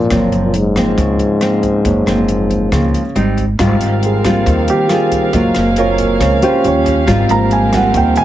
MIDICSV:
0, 0, Header, 1, 7, 480
1, 0, Start_track
1, 0, Key_signature, -4, "major"
1, 0, Tempo, 435730
1, 120, Time_signature, 4, 2, 24, 8
1, 9083, End_track
2, 0, Start_track
2, 0, Title_t, "Violin section"
2, 0, Program_c, 0, 48
2, 3956, Note_on_c, 0, 60, 59
2, 3958, Note_on_c, 0, 77, 69
2, 3962, Note_on_c, 0, 70, 55
2, 5859, Note_off_c, 0, 60, 0
2, 5886, Note_on_c, 0, 58, 64
2, 5887, Note_on_c, 0, 68, 51
2, 7286, Note_off_c, 0, 70, 0
2, 7308, Note_off_c, 0, 58, 0
2, 7309, Note_off_c, 0, 68, 0
2, 7321, Note_on_c, 0, 61, 67
2, 7324, Note_on_c, 0, 67, 66
2, 7795, Note_off_c, 0, 61, 0
2, 7801, Note_on_c, 0, 60, 69
2, 7802, Note_on_c, 0, 70, 57
2, 9083, Note_off_c, 0, 60, 0
2, 9083, Note_off_c, 0, 67, 0
2, 9083, Note_off_c, 0, 70, 0
2, 9083, Note_off_c, 0, 77, 0
2, 9083, End_track
3, 0, Start_track
3, 0, Title_t, "Grand piano"
3, 0, Program_c, 1, 0
3, 4190, Control_c, 1, 64, 127
3, 4467, Note_on_c, 1, 68, 45
3, 4682, Note_on_c, 1, 53, 39
3, 4683, Note_on_c, 1, 67, 36
3, 4687, Note_on_c, 1, 58, 37
3, 4695, Note_on_c, 1, 60, 45
3, 5001, Note_off_c, 1, 53, 0
3, 5002, Note_off_c, 1, 67, 0
3, 5004, Note_off_c, 1, 58, 0
3, 5009, Note_off_c, 1, 60, 0
3, 5131, Note_off_c, 1, 68, 0
3, 5175, Note_on_c, 1, 67, 65
3, 5402, Note_off_c, 1, 67, 0
3, 5423, Note_on_c, 1, 68, 60
3, 5860, Note_off_c, 1, 68, 0
3, 5876, Note_on_c, 1, 56, 36
3, 5881, Note_on_c, 1, 58, 36
3, 5889, Note_on_c, 1, 60, 43
3, 5896, Control_c, 1, 64, 0
3, 6112, Control_c, 1, 64, 127
3, 6198, Note_off_c, 1, 56, 0
3, 6200, Note_off_c, 1, 58, 0
3, 6204, Note_off_c, 1, 60, 0
3, 6381, Note_on_c, 1, 73, 64
3, 6839, Note_on_c, 1, 53, 36
3, 6840, Note_on_c, 1, 56, 29
3, 6843, Note_on_c, 1, 58, 35
3, 6851, Note_on_c, 1, 60, 41
3, 7046, Note_off_c, 1, 73, 0
3, 7055, Note_off_c, 1, 53, 0
3, 7056, Note_off_c, 1, 56, 0
3, 7058, Note_off_c, 1, 58, 0
3, 7062, Note_off_c, 1, 60, 0
3, 7092, Note_on_c, 1, 72, 63
3, 7319, Note_off_c, 1, 72, 0
3, 7325, Note_on_c, 1, 53, 37
3, 7331, Note_on_c, 1, 55, 39
3, 7333, Control_c, 1, 64, 0
3, 7335, Note_on_c, 1, 61, 45
3, 7355, Note_on_c, 1, 73, 62
3, 7506, Control_c, 1, 64, 127
3, 7778, Note_off_c, 1, 53, 0
3, 7781, Note_off_c, 1, 55, 0
3, 7783, Note_off_c, 1, 61, 0
3, 7784, Note_off_c, 1, 73, 0
3, 7813, Control_c, 1, 64, 0
3, 8002, Control_c, 1, 64, 127
3, 8038, Note_on_c, 1, 53, 44
3, 8039, Note_on_c, 1, 55, 41
3, 8046, Note_on_c, 1, 58, 37
3, 8047, Note_on_c, 1, 60, 48
3, 8052, Note_on_c, 1, 82, 78
3, 8278, Note_off_c, 1, 82, 0
3, 8292, Note_on_c, 1, 80, 64
3, 8357, Note_off_c, 1, 53, 0
3, 8358, Note_off_c, 1, 55, 0
3, 8362, Note_off_c, 1, 58, 0
3, 8362, Note_off_c, 1, 60, 0
3, 8518, Note_off_c, 1, 80, 0
3, 8527, Note_on_c, 1, 78, 68
3, 8755, Note_off_c, 1, 78, 0
3, 8782, Note_on_c, 1, 79, 67
3, 9002, Note_off_c, 1, 79, 0
3, 9004, Note_on_c, 1, 80, 85
3, 9083, Note_off_c, 1, 80, 0
3, 9083, End_track
4, 0, Start_track
4, 0, Title_t, "Nylon-string guitar"
4, 0, Program_c, 2, 24
4, 112, Note_on_c, 2, 42, 49
4, 120, Note_on_c, 2, 53, 44
4, 125, Note_on_c, 2, 58, 47
4, 130, Note_on_c, 2, 60, 50
4, 597, Note_off_c, 2, 53, 0
4, 600, Note_off_c, 2, 58, 0
4, 603, Note_off_c, 2, 60, 0
4, 842, Note_on_c, 2, 53, 50
4, 845, Note_on_c, 2, 58, 49
4, 852, Note_on_c, 2, 60, 49
4, 1054, Note_off_c, 2, 42, 0
4, 1086, Note_on_c, 2, 49, 45
4, 1524, Note_off_c, 2, 58, 0
4, 1525, Note_off_c, 2, 53, 0
4, 1529, Note_off_c, 2, 60, 0
4, 1552, Note_on_c, 2, 53, 51
4, 1561, Note_on_c, 2, 58, 55
4, 1565, Note_on_c, 2, 60, 52
4, 2021, Note_off_c, 2, 49, 0
4, 2039, Note_on_c, 2, 42, 49
4, 2239, Note_off_c, 2, 53, 0
4, 2244, Note_off_c, 2, 58, 0
4, 2244, Note_off_c, 2, 60, 0
4, 2270, Note_on_c, 2, 53, 47
4, 2280, Note_on_c, 2, 58, 52
4, 2285, Note_on_c, 2, 60, 56
4, 2958, Note_off_c, 2, 53, 0
4, 2964, Note_off_c, 2, 58, 0
4, 2966, Note_off_c, 2, 60, 0
4, 2978, Note_off_c, 2, 42, 0
4, 2992, Note_on_c, 2, 49, 46
4, 3000, Note_on_c, 2, 53, 48
4, 3000, Note_on_c, 2, 58, 46
4, 3005, Note_on_c, 2, 60, 50
4, 3323, Note_off_c, 2, 53, 0
4, 3324, Note_off_c, 2, 58, 0
4, 3327, Note_off_c, 2, 60, 0
4, 3455, Note_off_c, 2, 49, 0
4, 3474, Note_on_c, 2, 55, 49
4, 3477, Note_on_c, 2, 60, 55
4, 3484, Note_on_c, 2, 63, 51
4, 3788, Note_off_c, 2, 55, 0
4, 3790, Note_off_c, 2, 60, 0
4, 3791, Note_off_c, 2, 63, 0
4, 3954, Note_on_c, 2, 44, 51
4, 3955, Note_on_c, 2, 55, 51
4, 3959, Note_on_c, 2, 65, 57
4, 3962, Note_on_c, 2, 60, 52
4, 4640, Note_off_c, 2, 55, 0
4, 4642, Note_off_c, 2, 60, 0
4, 4643, Note_off_c, 2, 65, 0
4, 4675, Note_on_c, 2, 55, 54
4, 4685, Note_on_c, 2, 60, 53
4, 4685, Note_on_c, 2, 65, 57
4, 4895, Note_off_c, 2, 44, 0
4, 4919, Note_on_c, 2, 51, 44
4, 5361, Note_off_c, 2, 55, 0
4, 5363, Note_off_c, 2, 60, 0
4, 5365, Note_off_c, 2, 65, 0
4, 5386, Note_on_c, 2, 55, 51
4, 5391, Note_on_c, 2, 60, 48
4, 5398, Note_on_c, 2, 65, 53
4, 5836, Note_off_c, 2, 55, 0
4, 5838, Note_off_c, 2, 60, 0
4, 5842, Note_off_c, 2, 65, 0
4, 5856, Note_off_c, 2, 51, 0
4, 5882, Note_on_c, 2, 54, 50
4, 5883, Note_on_c, 2, 60, 44
4, 5885, Note_on_c, 2, 65, 51
4, 5891, Note_on_c, 2, 70, 57
4, 6190, Note_off_c, 2, 60, 0
4, 6192, Note_off_c, 2, 65, 0
4, 6195, Note_off_c, 2, 70, 0
4, 6362, Note_on_c, 2, 60, 47
4, 6365, Note_on_c, 2, 65, 46
4, 6367, Note_on_c, 2, 70, 54
4, 6817, Note_off_c, 2, 54, 0
4, 6828, Note_on_c, 2, 49, 51
4, 6839, Note_off_c, 2, 60, 0
4, 6839, Note_off_c, 2, 65, 0
4, 6841, Note_off_c, 2, 70, 0
4, 7073, Note_on_c, 2, 61, 63
4, 7079, Note_on_c, 2, 67, 64
4, 7081, Note_on_c, 2, 65, 55
4, 7290, Note_off_c, 2, 49, 0
4, 7757, Note_off_c, 2, 61, 0
4, 7759, Note_off_c, 2, 65, 0
4, 7760, Note_off_c, 2, 67, 0
4, 7783, Note_on_c, 2, 44, 50
4, 7787, Note_on_c, 2, 55, 50
4, 7792, Note_on_c, 2, 60, 53
4, 7797, Note_on_c, 2, 65, 61
4, 8268, Note_off_c, 2, 55, 0
4, 8269, Note_off_c, 2, 60, 0
4, 8275, Note_off_c, 2, 65, 0
4, 8517, Note_on_c, 2, 55, 61
4, 8523, Note_on_c, 2, 60, 56
4, 8527, Note_on_c, 2, 65, 60
4, 8726, Note_off_c, 2, 44, 0
4, 8751, Note_on_c, 2, 51, 47
4, 9083, Note_off_c, 2, 51, 0
4, 9083, Note_off_c, 2, 55, 0
4, 9083, Note_off_c, 2, 60, 0
4, 9083, Note_off_c, 2, 65, 0
4, 9083, End_track
5, 0, Start_track
5, 0, Title_t, "Trombone"
5, 0, Program_c, 3, 57
5, 0, Note_on_c, 3, 46, 81
5, 346, Note_off_c, 3, 46, 0
5, 476, Note_on_c, 3, 46, 73
5, 628, Note_on_c, 3, 44, 82
5, 645, Note_off_c, 3, 46, 0
5, 3497, Note_off_c, 3, 44, 0
5, 9083, End_track
6, 0, Start_track
6, 0, Title_t, "Upright bass"
6, 0, Program_c, 4, 32
6, 114, Note_on_c, 4, 30, 77
6, 341, Note_off_c, 4, 30, 0
6, 357, Note_on_c, 4, 30, 70
6, 1036, Note_off_c, 4, 30, 0
6, 1078, Note_on_c, 4, 37, 84
6, 1303, Note_off_c, 4, 37, 0
6, 2036, Note_on_c, 4, 30, 74
6, 2262, Note_off_c, 4, 30, 0
6, 2278, Note_on_c, 4, 30, 70
6, 2957, Note_off_c, 4, 30, 0
6, 2998, Note_on_c, 4, 37, 80
6, 3224, Note_off_c, 4, 37, 0
6, 3476, Note_on_c, 4, 32, 88
6, 3926, Note_off_c, 4, 32, 0
6, 3953, Note_on_c, 4, 32, 83
6, 4181, Note_off_c, 4, 32, 0
6, 4198, Note_on_c, 4, 32, 66
6, 4876, Note_off_c, 4, 32, 0
6, 4916, Note_on_c, 4, 39, 86
6, 5142, Note_off_c, 4, 39, 0
6, 5872, Note_on_c, 4, 30, 84
6, 6100, Note_off_c, 4, 30, 0
6, 6123, Note_on_c, 4, 30, 76
6, 6798, Note_off_c, 4, 30, 0
6, 6835, Note_on_c, 4, 37, 84
6, 7061, Note_off_c, 4, 37, 0
6, 7320, Note_on_c, 4, 39, 95
6, 7766, Note_off_c, 4, 39, 0
6, 7793, Note_on_c, 4, 32, 91
6, 8019, Note_off_c, 4, 32, 0
6, 8037, Note_on_c, 4, 32, 74
6, 8712, Note_off_c, 4, 32, 0
6, 8748, Note_on_c, 4, 39, 94
6, 8975, Note_off_c, 4, 39, 0
6, 9083, End_track
7, 0, Start_track
7, 0, Title_t, "Drums"
7, 115, Note_on_c, 9, 37, 57
7, 115, Note_on_c, 9, 42, 42
7, 116, Note_on_c, 9, 36, 52
7, 226, Note_off_c, 9, 36, 0
7, 226, Note_off_c, 9, 37, 0
7, 226, Note_off_c, 9, 42, 0
7, 355, Note_on_c, 9, 42, 21
7, 465, Note_off_c, 9, 42, 0
7, 593, Note_on_c, 9, 42, 39
7, 703, Note_off_c, 9, 42, 0
7, 836, Note_on_c, 9, 36, 19
7, 836, Note_on_c, 9, 37, 50
7, 836, Note_on_c, 9, 42, 23
7, 946, Note_off_c, 9, 36, 0
7, 946, Note_off_c, 9, 37, 0
7, 946, Note_off_c, 9, 42, 0
7, 1077, Note_on_c, 9, 36, 58
7, 1079, Note_on_c, 9, 42, 45
7, 1187, Note_off_c, 9, 36, 0
7, 1190, Note_off_c, 9, 42, 0
7, 1315, Note_on_c, 9, 42, 24
7, 1425, Note_off_c, 9, 42, 0
7, 1554, Note_on_c, 9, 37, 48
7, 1554, Note_on_c, 9, 42, 38
7, 1664, Note_off_c, 9, 37, 0
7, 1664, Note_off_c, 9, 42, 0
7, 1796, Note_on_c, 9, 42, 26
7, 1797, Note_on_c, 9, 36, 23
7, 1907, Note_off_c, 9, 36, 0
7, 1907, Note_off_c, 9, 42, 0
7, 2037, Note_on_c, 9, 36, 52
7, 2039, Note_on_c, 9, 42, 46
7, 2147, Note_off_c, 9, 36, 0
7, 2149, Note_off_c, 9, 42, 0
7, 2281, Note_on_c, 9, 37, 47
7, 2281, Note_on_c, 9, 42, 26
7, 2391, Note_off_c, 9, 37, 0
7, 2391, Note_off_c, 9, 42, 0
7, 2517, Note_on_c, 9, 42, 34
7, 2627, Note_off_c, 9, 42, 0
7, 2758, Note_on_c, 9, 36, 19
7, 2762, Note_on_c, 9, 42, 25
7, 2868, Note_off_c, 9, 36, 0
7, 2872, Note_off_c, 9, 42, 0
7, 2997, Note_on_c, 9, 36, 54
7, 2997, Note_on_c, 9, 37, 55
7, 2997, Note_on_c, 9, 42, 37
7, 3107, Note_off_c, 9, 36, 0
7, 3108, Note_off_c, 9, 37, 0
7, 3108, Note_off_c, 9, 42, 0
7, 3243, Note_on_c, 9, 42, 23
7, 3353, Note_off_c, 9, 42, 0
7, 3480, Note_on_c, 9, 42, 31
7, 3590, Note_off_c, 9, 42, 0
7, 3717, Note_on_c, 9, 36, 20
7, 3719, Note_on_c, 9, 42, 22
7, 3827, Note_off_c, 9, 36, 0
7, 3830, Note_off_c, 9, 42, 0
7, 3955, Note_on_c, 9, 37, 58
7, 3955, Note_on_c, 9, 42, 58
7, 3956, Note_on_c, 9, 36, 60
7, 4065, Note_off_c, 9, 37, 0
7, 4065, Note_off_c, 9, 42, 0
7, 4066, Note_off_c, 9, 36, 0
7, 4194, Note_on_c, 9, 42, 39
7, 4304, Note_off_c, 9, 42, 0
7, 4436, Note_on_c, 9, 42, 37
7, 4547, Note_off_c, 9, 42, 0
7, 4676, Note_on_c, 9, 36, 20
7, 4677, Note_on_c, 9, 37, 52
7, 4677, Note_on_c, 9, 42, 37
7, 4786, Note_off_c, 9, 36, 0
7, 4787, Note_off_c, 9, 37, 0
7, 4787, Note_off_c, 9, 42, 0
7, 4917, Note_on_c, 9, 36, 54
7, 4920, Note_on_c, 9, 42, 55
7, 5027, Note_off_c, 9, 36, 0
7, 5030, Note_off_c, 9, 42, 0
7, 5155, Note_on_c, 9, 42, 37
7, 5265, Note_off_c, 9, 42, 0
7, 5391, Note_on_c, 9, 37, 49
7, 5391, Note_on_c, 9, 42, 38
7, 5501, Note_off_c, 9, 37, 0
7, 5501, Note_off_c, 9, 42, 0
7, 5637, Note_on_c, 9, 36, 23
7, 5637, Note_on_c, 9, 42, 44
7, 5747, Note_off_c, 9, 36, 0
7, 5747, Note_off_c, 9, 42, 0
7, 5874, Note_on_c, 9, 42, 58
7, 5876, Note_on_c, 9, 36, 59
7, 5984, Note_off_c, 9, 42, 0
7, 5986, Note_off_c, 9, 36, 0
7, 6109, Note_on_c, 9, 37, 52
7, 6109, Note_on_c, 9, 42, 43
7, 6220, Note_off_c, 9, 37, 0
7, 6220, Note_off_c, 9, 42, 0
7, 6349, Note_on_c, 9, 42, 38
7, 6459, Note_off_c, 9, 42, 0
7, 6592, Note_on_c, 9, 42, 41
7, 6596, Note_on_c, 9, 36, 21
7, 6702, Note_off_c, 9, 42, 0
7, 6706, Note_off_c, 9, 36, 0
7, 6836, Note_on_c, 9, 36, 61
7, 6837, Note_on_c, 9, 37, 57
7, 6837, Note_on_c, 9, 42, 58
7, 6946, Note_off_c, 9, 36, 0
7, 6947, Note_off_c, 9, 37, 0
7, 6947, Note_off_c, 9, 42, 0
7, 7077, Note_on_c, 9, 42, 39
7, 7187, Note_off_c, 9, 42, 0
7, 7318, Note_on_c, 9, 42, 35
7, 7428, Note_off_c, 9, 42, 0
7, 7555, Note_on_c, 9, 36, 23
7, 7558, Note_on_c, 9, 42, 38
7, 7665, Note_off_c, 9, 36, 0
7, 7668, Note_off_c, 9, 42, 0
7, 7795, Note_on_c, 9, 36, 57
7, 7798, Note_on_c, 9, 37, 61
7, 7798, Note_on_c, 9, 42, 55
7, 7905, Note_off_c, 9, 36, 0
7, 7908, Note_off_c, 9, 37, 0
7, 7908, Note_off_c, 9, 42, 0
7, 8033, Note_on_c, 9, 42, 41
7, 8143, Note_off_c, 9, 42, 0
7, 8273, Note_on_c, 9, 42, 37
7, 8383, Note_off_c, 9, 42, 0
7, 8511, Note_on_c, 9, 36, 21
7, 8511, Note_on_c, 9, 37, 49
7, 8511, Note_on_c, 9, 42, 43
7, 8621, Note_off_c, 9, 36, 0
7, 8621, Note_off_c, 9, 37, 0
7, 8621, Note_off_c, 9, 42, 0
7, 8748, Note_on_c, 9, 42, 62
7, 8749, Note_on_c, 9, 36, 57
7, 8858, Note_off_c, 9, 42, 0
7, 8859, Note_off_c, 9, 36, 0
7, 8986, Note_on_c, 9, 42, 41
7, 9083, Note_off_c, 9, 42, 0
7, 9083, End_track
0, 0, End_of_file